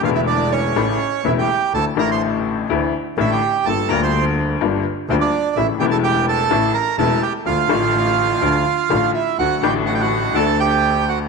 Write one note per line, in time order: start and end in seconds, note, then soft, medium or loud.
0.01 0.72 E1 medium
0.01 0.73 E1 medium
0.01 0.73 E2 medium
0.01 0.71 D3 medium
0.01 0.72 E3 medium
0.01 0.73 A3 soft
0.01 0.10 F4 medium
0.01 0.10 F5 medium
0.05 0.73 E4 medium
0.15 0.21 E4 medium
0.15 0.21 E5 medium
0.27 0.51 D4 medium
0.27 0.52 D5 medium
0.52 1.21 C#4 medium
0.52 1.27 C#5 medium
0.76 0.97 A1 medium
0.76 0.97 A2 medium
0.76 0.97 C#3 medium
0.76 0.97 E3 soft
0.76 0.97 A3 medium
0.76 0.97 E4 medium
1.24 1.45 E1 medium
1.24 1.46 E1 medium
1.24 1.45 E2 medium
1.24 1.45 C#3 medium
1.24 1.45 E3 soft
1.24 1.45 A3 soft
1.24 1.46 E4 medium
1.24 1.32 E4 medium
1.24 1.31 E5 medium
1.39 1.73 G4 medium
1.39 1.72 G5 medium
1.73 1.94 D2 soft
1.73 1.95 D2 soft
1.73 1.93 D3 soft
1.73 1.94 E3 soft
1.73 1.95 A3 soft
1.73 1.95 E4 soft
1.73 1.85 A4 medium
1.73 1.85 A5 medium
1.95 2.66 A1 medium
1.95 2.66 A2 medium
1.95 2.65 D3 medium
1.95 2.66 E3 medium
1.95 2.66 A3 soft
1.95 2.10 A#5 medium
1.99 2.67 E4 medium
1.99 2.10 A#4 medium
2.11 2.22 C5 medium
2.11 2.22 C6 medium
2.70 2.90 D2 medium
2.70 2.91 D3 medium
2.70 2.91 E3 soft
2.70 2.91 A3 soft
2.70 2.91 E4 medium
3.18 3.38 A1 medium
3.18 3.39 A2 medium
3.18 3.38 D3 medium
3.18 3.38 E3 medium
3.18 3.39 A3 medium
3.18 3.39 E4 medium
3.18 3.31 E4 soft
3.18 3.31 E5 medium
3.31 3.65 G4 soft
3.31 3.68 G5 medium
3.65 3.86 G1 soft
3.65 3.87 G1 soft
3.65 3.86 G2 soft
3.65 3.87 D3 soft
3.65 3.86 G3 soft
3.65 3.87 A#3 soft
3.65 3.87 F4 soft
3.65 3.90 A4 medium
3.65 3.88 A5 medium
3.89 4.58 D2 medium
3.89 4.58 D3 medium
3.89 4.58 G3 medium
3.89 4.58 A#3 medium
3.89 4.59 F4 medium
3.89 4.02 A#4 medium
3.89 4.01 A#5 medium
4.03 4.25 C5 medium
4.03 4.25 C6 medium
4.61 4.81 G1 medium
4.61 4.82 G1 medium
4.61 4.81 G2 medium
4.61 4.81 D3 medium
4.61 4.81 G3 medium
4.61 4.81 A#3 soft
4.61 4.81 F4 medium
5.09 5.29 D2 medium
5.09 5.30 D2 medium
5.09 5.29 D3 medium
5.09 5.30 G3 soft
5.09 5.29 A#3 medium
5.09 5.16 C4 soft
5.09 5.30 F4 medium
5.09 5.15 C5 medium
5.21 5.54 D4 medium
5.21 5.57 D5 medium
5.56 5.76 A1 medium
5.56 5.77 A1 soft
5.56 5.77 A2 soft
5.56 5.77 C#3 soft
5.56 5.77 E3 soft
5.56 5.77 A3 soft
5.56 5.67 E4 medium
5.56 5.77 E4 soft
5.56 5.67 E5 medium
5.79 6.47 E1 medium
5.79 6.48 E1 medium
5.79 6.48 E2 medium
5.79 6.47 C#3 medium
5.79 6.48 E3 medium
5.79 6.48 A3 medium
5.79 5.86 G4 medium
5.79 5.85 G5 medium
5.83 6.49 E4 medium
5.91 5.98 A4 medium
5.91 5.97 A5 medium
6.04 6.26 G4 medium
6.04 6.26 G5 medium
6.29 6.72 A4 medium
6.29 6.77 A5 medium
6.50 6.71 A1 medium
6.50 6.71 A2 medium
6.50 6.71 C#3 medium
6.50 6.71 E3 soft
6.50 6.71 A3 medium
6.50 6.71 E4 medium
6.74 6.96 A#4 medium
6.74 6.96 A#5 medium
6.98 7.19 E1 medium
6.98 7.19 E2 medium
6.98 7.18 C#3 medium
6.98 7.19 E3 medium
6.98 7.18 A3 medium
6.98 7.19 E4 medium
6.98 7.21 A4 medium
6.98 7.23 A5 medium
7.22 7.33 G4 medium
7.22 7.33 G5 medium
7.46 7.66 D2 soft
7.46 7.66 D2 medium
7.46 7.66 D3 soft
7.46 7.66 F3 soft
7.46 7.66 A3 soft
7.46 7.66 F4 soft
7.46 9.11 F4 medium
7.46 9.11 F5 medium
7.67 8.38 A1 medium
7.67 8.38 A2 medium
7.67 8.37 D3 medium
7.67 8.37 F3 soft
7.67 8.38 A3 medium
7.67 8.39 F4 medium
8.41 8.61 D2 medium
8.41 8.62 D2 medium
8.41 8.62 D3 medium
8.41 8.62 F3 medium
8.41 8.62 A3 medium
8.41 8.62 F4 medium
8.90 9.11 A1 medium
8.90 9.11 A2 medium
8.90 9.11 D3 medium
8.90 9.11 F3 soft
8.90 9.11 A3 soft
8.90 9.11 F4 medium
9.14 9.38 E4 medium
9.14 9.37 E5 medium
9.38 9.59 D2 soft
9.38 9.59 D3 soft
9.38 9.59 F#3 soft
9.38 9.59 A3 soft
9.38 9.59 F#4 soft
9.38 9.62 F#4 medium
9.38 9.64 F#5 medium
9.62 10.31 A1 medium
9.62 10.32 A2 medium
9.62 10.31 D3 medium
9.62 10.31 F#3 medium
9.62 10.32 A3 medium
9.62 9.74 G4 medium
9.62 9.74 G5 medium
9.66 10.33 F#4 medium
9.86 9.94 F#4 medium
9.86 9.94 F#5 medium
9.94 10.01 G5 medium
10.01 10.33 F#4 medium
10.01 10.36 F#5 medium
10.33 11.25 D2 medium
10.33 11.26 D2 medium
10.33 10.35 D3 medium
10.33 11.27 D3 medium
10.33 11.27 A3 medium
10.33 10.58 A4 medium
10.33 10.60 A5 medium
10.38 11.28 A4 medium
10.60 11.05 G4 medium
10.60 11.09 G5 medium
11.09 11.19 F#4 medium
11.09 11.19 F#5 medium